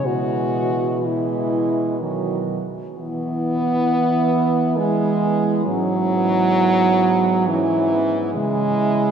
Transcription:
0.04 2.59 B2 medium
0.04 1.02 E3 medium
0.04 1.02 G#3 medium
0.04 1.06 F#4 loud
1.03 2.01 E3 medium
1.03 1.99 G#3 medium
1.03 2.02 E4 medium
2.00 2.63 D#3 medium
2.00 2.62 F#3 medium
2.96 5.63 E3 medium
2.96 4.78 B3 loud
2.96 4.75 E4 medium
3.88 4.80 E4 medium
4.77 5.64 G#3 loud
4.77 5.68 B3 medium
4.77 5.67 E4 medium
5.65 8.38 G#2 medium
5.65 7.48 F#3 loud
5.65 6.16 C#4 medium
5.69 7.45 E4 medium
6.15 7.49 B3 medium
7.47 8.34 E3 loud
7.47 7.93 C#4 medium
7.47 8.36 E4 medium
7.92 8.36 B3 medium
8.35 9.11 C#3 medium
8.35 9.11 G#3 loud
8.35 9.11 E4 medium
8.39 9.11 E4 medium

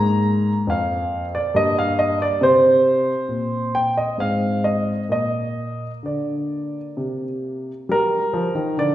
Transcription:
0.00 0.50 G#2 medium
0.00 1.50 A#3 soft
0.00 0.56 A#5 medium
0.67 1.36 F2 soft
0.67 1.24 F5 medium
1.35 1.55 D5 medium
1.54 2.23 G2 soft
1.54 2.36 A#3 soft
1.54 1.76 D#5 medium
1.79 1.98 F5 medium
1.99 2.19 D#5 medium
2.22 2.42 D5 medium
2.41 3.11 C3 medium
2.41 4.14 C4 soft
2.41 3.74 C5 medium
3.29 4.00 A#2 soft
3.75 3.96 G5 medium
3.97 4.18 D#5 medium
4.18 4.91 G#2 soft
4.18 5.05 C4 soft
4.18 4.64 F5 medium
4.64 5.03 D#5 medium
5.09 5.84 A#2 soft
5.09 7.85 A#3 soft
5.09 5.90 D#5 medium
6.03 6.78 D3 soft
6.03 7.24 D5 soft
6.97 7.71 C3 soft
7.89 8.21 G3 medium
7.89 8.79 A#4 medium
8.33 8.54 F3 medium
8.55 8.76 D#3 soft
8.77 8.95 D3 soft
8.77 8.95 D5 medium

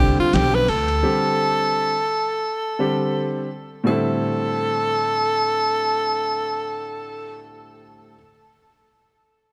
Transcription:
0.00 0.16 C2 medium
0.00 0.64 D3 medium
0.00 0.64 G3 medium
0.00 0.65 C4 medium
0.00 0.65 D4 medium
0.00 0.17 G4 loud
0.19 0.36 F4 loud
0.19 muted upright bass stroke soft
0.33 0.67 B1 loud
0.33 0.56 G4 loud
0.33 snare medium
0.33 hi-hat pedal soft
0.33 ride medium
0.55 0.71 B4 loud
0.68 1.02 D2 medium
0.68 3.51 A4 loud
0.68 ride medium
0.88 ride soft
1.03 1.94 D3 medium
1.03 1.94 G3 medium
1.03 1.95 C4 medium
1.03 1.95 G4 medium
2.79 3.47 D3 medium
2.79 3.47 G3 medium
2.79 3.47 C4 medium
2.79 3.47 G4 medium
3.84 8.13 A2 medium
3.84 8.14 D3 medium
3.84 8.14 G3 medium
3.84 8.15 C4 medium
3.84 7.45 A4 medium
3.88 8.15 E4 medium

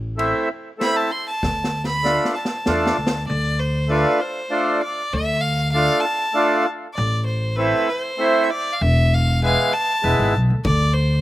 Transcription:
0.00 0.31 A1 loud
0.17 0.48 A3 medium
0.17 0.49 C4 medium
0.17 0.49 E4 medium
0.17 ride medium
0.78 1.10 A3 medium
0.78 1.11 C4 medium
0.78 1.11 E4 medium
0.78 0.98 B5 loud
0.78 snare medium
0.78 ride soft
0.96 1.13 A5 medium
1.11 1.27 C6 loud
1.27 1.85 A5 loud
1.43 2.17 D2 medium
1.43 kick medium
1.43 snare medium
1.64 snare medium
1.84 2.31 B5 loud
1.84 snare soft
2.03 2.35 A3 medium
2.03 2.35 D4 medium
2.03 2.35 F4 medium
2.03 snare medium
2.25 snare medium
2.35 3.23 A5 medium
2.45 snare medium
2.66 2.94 E2 medium
2.66 2.97 A3 medium
2.66 2.97 D4 medium
2.66 2.97 F4 medium
2.66 snare medium
2.86 snare medium
2.98 3.25 D2 medium
3.07 snare medium
3.28 4.03 D2 loud
3.28 3.61 D5 medium
3.59 3.92 C5 medium
3.88 4.20 A3 medium
3.88 4.20 D4 medium
3.88 4.21 F4 medium
3.88 4.22 B4 medium
4.21 4.82 C5 medium
4.50 4.81 A3 medium
4.50 4.82 D4 medium
4.50 4.82 F4 medium
4.83 5.15 D5 medium
5.13 5.87 D2 loud
5.13 5.42 E5 loud
5.41 5.71 F5 loud
5.72 6.05 A3 medium
5.72 6.05 D4 medium
5.72 6.05 F4 medium
5.72 6.02 F5 loud
6.00 6.64 A5 loud
6.33 6.65 A3 medium
6.33 6.66 D4 medium
6.33 6.66 F4 loud
6.94 7.71 A1 loud
6.94 7.24 D5 medium
7.26 7.58 C5 medium
7.56 7.88 A3 medium
7.56 7.89 C4 medium
7.56 7.90 E4 medium
7.56 7.91 B4 loud
7.89 8.45 C5 medium
8.18 8.49 A3 medium
8.18 8.50 C4 medium
8.18 8.51 E4 medium
8.43 8.52 E5 medium
8.50 8.74 D5 loud
8.73 8.83 F5 medium
8.81 9.55 E1 loud
8.81 9.15 E5 loud
9.14 9.43 F5 loud
9.42 9.74 E3 medium
9.42 9.73 G#3 medium
9.42 9.73 B3 medium
9.42 9.75 F5 loud
9.73 10.34 A5 loud
10.02 10.18 E1 medium
10.02 10.34 G#3 medium
10.02 10.34 B3 medium
10.02 10.34 E4 medium
10.19 10.33 G#1 medium
10.35 10.48 B1 medium
10.50 10.64 D2 medium
10.65 11.21 D2 loud
10.65 10.95 D5 medium
10.65 kick loud
10.65 ride soft
10.94 11.21 C5 medium

